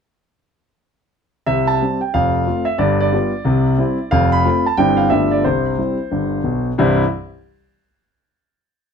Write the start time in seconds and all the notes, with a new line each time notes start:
1.46 C2 C3 E5
1.67 A5
1.82 G3 C4 G4
2.01 G5
2.14 F1 F2 F5
2.47 A3 C4 F4
2.65 E5
2.78 G1 G2 D5
3.00 D5
3.13 G3 B3 F4
3.45 C2 C3
3.78 G3 C4 E4
4.11 F1 F2 F5
4.32 B5
4.45 A3 C4 F4
4.66 A5
4.77 G1 G2 G3 C4 E4 G5
4.97 F5
5.10 G1 G2 A3 B3 F4 E5
5.31 D5
5.44 C2 C3 C5
5.78 G3 C4 E4
6.11 G1 G2
6.44 B1 B2
6.78 C2 G2 E3 G3 C4 E4